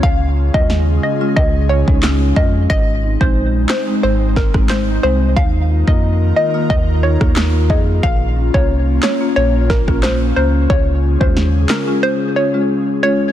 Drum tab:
CP |------------x---|------x-----x---|------------x---|------x-----x---|
SD |----o-------o---|------o---oro---|-----------ro---|------o---oro---|
BD |o--o----o--o--o-|o--o------oo----|o--o----o--o--o-|o--o------oo----|

CP |------x---------|
SD |----o-o---------|
BD |o--o------------|